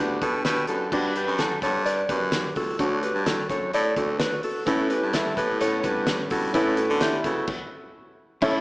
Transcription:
0.00 0.18 D2 medium
0.00 0.44 B3 medium
0.00 0.20 D4 medium
0.00 0.23 D4 medium
0.00 0.45 D4 medium
0.00 0.20 G4 medium
0.00 0.22 G4 medium
0.00 0.45 G4 medium
0.00 0.20 B4 medium
0.00 0.46 B4 medium
0.21 0.41 B2 medium
0.21 0.92 D4 medium
0.21 0.46 F#4 medium
0.21 0.91 G4 soft
0.21 0.45 A4 medium
0.21 0.92 B4 medium
0.21 kick medium
0.21 closed hi-hat medium
0.44 0.65 B2 loud
0.44 0.68 B3 medium
0.44 0.69 D4 medium
0.44 0.68 G4 medium
0.44 0.69 G4 medium
0.44 0.68 B4 medium
0.44 0.67 B4 medium
0.44 snare loud
0.44 closed hi-hat medium
0.67 0.88 F#2 medium
0.67 0.93 D4 soft
0.67 0.91 F#4 medium
0.67 0.92 G4 soft
0.67 0.92 A4 medium
0.67 0.92 B4 soft
0.67 closed hi-hat medium
0.92 1.22 G2 medium
0.92 1.16 D4 medium
0.92 1.16 F#4 medium
0.92 2.76 F#4 medium
0.92 2.76 G4 medium
0.92 2.76 B4 medium
0.92 kick medium
0.92 crash medium
1.16 1.40 G4 medium
1.16 1.39 B4 medium
1.16 closed hi-hat medium
1.26 1.56 F#2 medium
1.39 1.63 F#4 medium
1.39 1.62 A4 medium
1.39 snare medium
1.39 closed hi-hat medium
1.62 2.02 G2 medium
1.62 1.86 A4 medium
1.62 1.85 C#5 medium
1.62 kick medium
1.62 closed hi-hat medium
1.86 2.08 B4 medium
1.86 2.09 D5 medium
1.86 closed hi-hat medium
2.09 2.49 F#2 medium
2.09 2.54 G4 medium
2.09 2.53 B4 medium
2.09 kick medium
2.09 closed hi-hat medium
2.32 snare loud
2.32 closed hi-hat loud
2.56 2.76 C#2 medium
2.56 2.79 F#4 medium
2.56 2.80 A4 medium
2.56 kick medium
2.56 open hi-hat medium
2.79 3.09 D2 medium
2.79 4.63 D4 medium
2.79 3.03 D4 medium
2.79 4.63 F#4 medium
2.79 3.03 F#4 medium
2.79 4.63 C#5 medium
2.79 kick medium
2.79 closed hi-hat medium
3.03 3.27 G4 medium
3.03 3.26 B4 medium
3.03 closed hi-hat medium
3.14 3.44 G2 medium
3.26 3.50 F#4 medium
3.26 3.50 A4 medium
3.26 snare loud
3.26 closed hi-hat loud
3.49 3.69 F#2 medium
3.49 3.74 A4 medium
3.49 3.74 C#5 medium
3.49 kick medium
3.49 closed hi-hat medium
3.73 3.93 A2 loud
3.73 3.96 A4 medium
3.73 3.97 D5 medium
3.73 closed hi-hat medium
3.96 4.36 D2 medium
3.96 4.20 F#4 medium
3.96 4.20 A4 medium
3.96 kick medium
3.96 closed hi-hat medium
4.20 4.44 F#4 medium
4.20 4.44 B4 medium
4.20 snare loud
4.20 closed hi-hat medium
4.43 4.67 F#4 medium
4.43 4.67 A4 medium
4.43 open hi-hat medium
4.66 5.13 A2 medium
4.66 4.97 A2 medium
4.66 5.13 A3 medium
4.66 5.13 B3 medium
4.66 6.50 C#4 medium
4.66 5.13 C#4 medium
4.66 4.91 C#4 medium
4.66 5.15 E4 medium
4.66 4.91 E4 medium
4.66 6.50 A4 medium
4.66 6.51 B4 medium
4.66 kick medium
4.66 closed hi-hat medium
4.90 5.14 G4 medium
4.90 5.14 B4 medium
4.90 closed hi-hat medium
5.02 5.32 G2 medium
5.13 5.60 A3 medium
5.13 5.60 B3 medium
5.13 5.60 C#4 medium
5.13 5.61 E4 medium
5.13 5.38 E4 medium
5.13 5.37 A4 medium
5.13 snare loud
5.13 closed hi-hat loud
5.37 5.85 A2 loud
5.37 5.61 G4 medium
5.37 5.61 B4 medium
5.37 kick medium
5.37 closed hi-hat medium
5.60 6.07 A2 medium
5.60 6.07 A3 medium
5.60 6.07 B3 medium
5.60 6.08 C#4 medium
5.60 6.09 E4 medium
5.60 5.84 A4 medium
5.60 5.84 C#5 medium
5.60 closed hi-hat medium
5.83 6.24 G2 medium
5.83 6.29 G4 medium
5.83 6.28 B4 medium
5.83 kick medium
5.83 closed hi-hat medium
6.07 6.31 A3 medium
6.07 6.30 B3 medium
6.07 6.31 C#4 medium
6.07 6.29 E4 medium
6.07 snare loud
6.07 closed hi-hat loud
6.30 6.51 G2 medium
6.30 6.54 B3 soft
6.30 6.54 C#4 soft
6.30 6.54 E4 medium
6.30 6.54 F#4 medium
6.30 6.55 A4 medium
6.30 kick medium
6.30 open hi-hat medium
6.53 6.84 A2 loud
6.53 7.01 A2 medium
6.53 7.00 A3 medium
6.53 7.00 B3 medium
6.53 7.46 C#4 medium
6.53 7.01 C#4 medium
6.53 6.78 C#4 medium
6.53 6.78 E4 medium
6.53 7.02 E4 medium
6.53 7.46 A4 medium
6.53 7.46 B4 medium
6.53 kick loud
6.53 closed hi-hat medium
6.77 7.02 F#4 medium
6.77 7.01 A4 medium
6.77 closed hi-hat medium
6.89 7.19 D3 loud
7.00 7.24 A3 medium
7.00 7.24 B3 medium
7.00 7.25 C#4 medium
7.00 7.23 E4 medium
7.00 7.25 E4 medium
7.00 7.25 G4 medium
7.00 snare loud
7.00 closed hi-hat loud
7.24 7.44 C#3 medium
7.24 7.48 B3 medium
7.24 7.49 C#4 soft
7.24 7.48 E4 medium
7.24 7.49 F#4 medium
7.24 7.48 A4 medium
7.24 kick medium
7.24 closed hi-hat medium
7.47 kick loud
7.47 crash medium
8.42 8.61 A2 medium
8.42 8.61 C#4 medium
8.42 8.61 E4 loud
8.42 8.61 E4 medium
8.42 8.61 A4 medium
8.42 8.61 C#5 medium
8.42 kick loud
8.42 crash medium

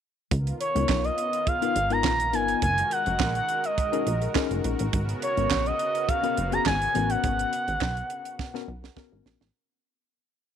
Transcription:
0.31 0.53 C#2 loud
0.31 4.89 D#3 medium
0.31 2.60 B3 medium
0.31 2.60 F4 medium
0.31 9.50 A#4 medium
0.31 kick loud
0.31 closed hi-hat medium
0.47 closed hi-hat soft
0.60 1.06 C#5 medium
0.60 closed hi-hat medium
0.75 0.86 C#2 loud
0.75 1.11 B3 medium
0.75 1.11 D#4 medium
0.75 1.11 F4 medium
0.75 1.11 A#4 medium
0.75 closed hi-hat medium
0.89 1.10 B1 medium
0.89 kick loud
0.89 snare loud
0.89 clap medium
1.04 1.49 D#5 loud
1.04 closed hi-hat soft
1.18 closed hi-hat medium
1.33 closed hi-hat medium
1.47 1.54 F4 medium
1.47 1.55 G#4 medium
1.47 1.93 F5 loud
1.47 kick loud
1.47 closed hi-hat medium
1.62 1.75 B3 medium
1.62 1.76 D#4 medium
1.62 1.76 F4 medium
1.62 1.76 A#4 medium
1.62 closed hi-hat medium
1.76 2.06 G#1 medium
1.76 closed hi-hat medium
1.90 2.12 B3 medium
1.90 2.12 D#4 medium
1.90 2.12 F4 medium
1.90 2.12 A#4 loud
1.90 2.36 A#5 loud
1.90 closed hi-hat soft
2.04 2.35 A#1 medium
2.04 kick loud
2.04 snare loud
2.04 clap medium
2.20 closed hi-hat medium
2.33 2.55 G1 medium
2.33 2.62 B3 medium
2.33 2.62 D#4 medium
2.33 2.62 F4 medium
2.33 2.62 A#4 medium
2.33 2.62 G#5 loud
2.33 closed hi-hat medium
2.48 closed hi-hat medium
2.62 2.83 F#1 loud
2.62 4.91 G#3 medium
2.62 9.51 F#4 medium
2.62 2.94 G#5 loud
2.62 kick loud
2.62 closed hi-hat medium
2.78 closed hi-hat medium
2.91 3.36 F#5 loud
2.91 closed hi-hat medium
3.06 3.17 F#1 medium
3.06 closed hi-hat medium
3.20 3.41 A#1 loud
3.20 kick loud
3.20 snare loud
3.20 clap medium
3.35 3.67 F#5 medium
3.35 closed hi-hat soft
3.49 closed hi-hat medium
3.64 4.51 D#5 medium
3.64 closed hi-hat medium
3.78 kick loud
3.78 closed hi-hat medium
3.92 4.06 C#4 medium
3.92 4.06 D#4 medium
3.92 4.06 G#4 medium
3.92 4.06 A#4 loud
3.92 closed hi-hat medium
4.07 4.28 A#1 medium
4.07 closed hi-hat medium
4.21 4.28 G#4 medium
4.21 4.29 A#4 medium
4.21 closed hi-hat soft
4.35 4.85 C#4 loud
4.35 4.85 D#4 medium
4.35 4.86 G#4 medium
4.35 4.86 A#4 loud
4.35 kick loud
4.35 snare loud
4.35 clap medium
4.51 4.61 F#1 medium
4.51 closed hi-hat soft
4.64 4.76 A#1 loud
4.64 closed hi-hat medium
4.79 4.90 A1 medium
4.79 closed hi-hat medium
4.93 5.14 G#1 medium
4.93 9.51 C#3 medium
4.93 9.51 B3 medium
4.93 kick loud
4.93 closed hi-hat medium
5.09 closed hi-hat medium
5.22 5.68 C#5 loud
5.22 closed hi-hat medium
5.37 5.47 G#1 loud
5.37 5.72 B3 medium
5.37 5.72 C#4 medium
5.37 5.72 F#4 medium
5.37 5.73 A#4 medium
5.37 closed hi-hat medium
5.51 5.72 A#1 medium
5.51 kick loud
5.51 snare loud
5.51 clap medium
5.66 6.10 D#5 loud
5.66 closed hi-hat soft
5.79 closed hi-hat medium
5.95 closed hi-hat medium
6.08 6.16 F#4 medium
6.08 6.16 G#4 medium
6.08 6.54 F5 loud
6.08 kick loud
6.08 closed hi-hat medium
6.23 6.37 B3 loud
6.23 6.37 C#4 medium
6.23 6.37 F#4 medium
6.23 6.37 A#4 loud
6.23 closed hi-hat soft
6.37 6.59 F#1 medium
6.37 closed hi-hat medium
6.52 6.73 B3 medium
6.52 6.73 C#4 medium
6.52 6.74 F#4 medium
6.52 6.74 G#4 medium
6.52 6.66 A#5 loud
6.52 closed hi-hat soft
6.66 6.87 G#1 loud
6.66 7.12 G#5 loud
6.66 kick loud
6.66 snare loud
6.66 clap medium
6.82 closed hi-hat medium
6.95 7.16 A1 medium
6.95 7.52 B3 medium
6.95 7.52 C#4 medium
6.95 7.52 F#4 medium
6.95 7.52 A#4 medium
6.95 closed hi-hat medium
7.10 8.97 F#5 loud
7.10 closed hi-hat medium
7.24 7.45 G#1 loud
7.24 kick loud
7.24 closed hi-hat medium
7.39 closed hi-hat medium
7.53 closed hi-hat medium
7.68 7.78 G#1 loud
7.68 closed hi-hat soft
7.81 8.02 B1 medium
7.81 kick loud
7.81 snare loud
7.81 clap medium
7.97 closed hi-hat soft
8.10 closed hi-hat medium
8.25 closed hi-hat medium
8.39 kick loud
8.39 snare medium
8.54 8.68 B3 loud
8.54 8.68 C#4 medium
8.54 8.68 F#4 medium
8.54 8.68 A#4 loud
8.54 snare soft
8.68 8.89 B1 loud
8.83 8.90 F#4 medium
8.83 8.90 A#4 loud
8.83 snare medium
8.96 9.47 B3 medium
8.96 9.47 C#4 medium
8.96 9.47 F#4 medium
8.96 9.47 A#4 loud
8.96 kick loud
8.96 snare medium
9.12 9.22 G#1 medium
9.26 9.37 A#1 loud
9.26 snare medium
9.41 9.51 A1 medium
9.41 snare medium

